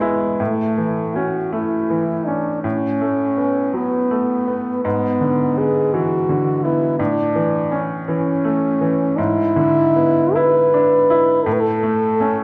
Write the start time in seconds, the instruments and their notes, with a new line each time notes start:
0.00 grand piano G#3 B3 E4
0.40 grand piano A2, french horn A3
0.77 grand piano E3
1.15 grand piano C#4, french horn F#4
1.52 grand piano A3, french horn E4
1.90 grand piano E3
2.26 grand piano C#4, french horn D4
2.64 grand piano A2, french horn C#4
3.01 grand piano A3
3.37 grand piano B3
3.73 grand piano F#3, french horn B3
4.11 grand piano A3
4.48 grand piano B3
4.85 grand piano G#2, french horn B3
5.21 grand piano D3
5.58 grand piano B3, french horn G#4
5.94 grand piano E3, french horn F#4
6.29 grand piano D3
6.64 grand piano B3, french horn E4
6.99 grand piano A2, french horn D4
7.35 grand piano E3
7.71 grand piano C#4
8.07 grand piano E3, french horn C#4
8.44 grand piano A3
8.81 grand piano E3
9.18 grand piano G#2, french horn E4
9.56 grand piano D3
9.96 grand piano B3
10.35 grand piano E4, french horn B4
10.74 grand piano D4
11.10 grand piano E4
11.45 grand piano A2, french horn A4
11.54 french horn B4
11.60 french horn A4
11.83 grand piano A3
12.20 grand piano A3 C#4